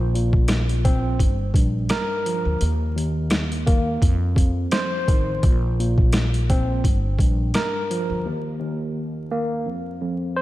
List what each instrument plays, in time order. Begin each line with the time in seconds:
Already playing: upright bass A#1, tine electric piano A#2
0.14 tine electric piano A#2, closed hi-hat
0.33 kick
0.48 cross-stick, snare, closed hi-hat
0.69 closed hi-hat
0.85 tine electric piano C4, kick, closed hi-hat
1.19 upright bass G1, tine electric piano G2, kick, closed hi-hat
1.54 upright bass A#1, tine electric piano G2, kick, closed hi-hat
1.89 tine electric piano A#4, cross-stick, snare, closed hi-hat
2.26 tine electric piano F3, closed hi-hat
2.45 upright bass D2
2.61 tine electric piano D#2, upright bass D#2, closed hi-hat
2.95 tine electric piano D#2, closed hi-hat
3.30 cross-stick, snare, closed hi-hat
3.52 closed hi-hat
3.67 tine electric piano A#3, kick, closed hi-hat
4.01 tine electric piano F2, upright bass F2, kick, closed hi-hat
4.36 tine electric piano F2, kick, closed hi-hat
4.71 tine electric piano C5, cross-stick, snare, closed hi-hat
5.08 upright bass A1, tine electric piano D#3, kick, closed hi-hat
5.43 upright bass A#1, tine electric piano A#2, kick, closed hi-hat
5.79 tine electric piano A#2, closed hi-hat
5.98 kick
6.12 cross-stick, snare, closed hi-hat
6.34 closed hi-hat
6.49 tine electric piano C4, kick, closed hi-hat
6.84 upright bass G1, tine electric piano G2, kick, closed hi-hat
7.19 upright bass A#1, tine electric piano G2, kick, closed hi-hat
7.54 tine electric piano A#4, cross-stick, snare, closed hi-hat
7.91 tine electric piano F3, closed hi-hat
8.10 upright bass D2
8.25 tine electric piano D#2
8.61 tine electric piano D#2
9.31 tine electric piano A#3
9.66 tine electric piano F2
10.01 tine electric piano F2
10.37 tine electric piano C5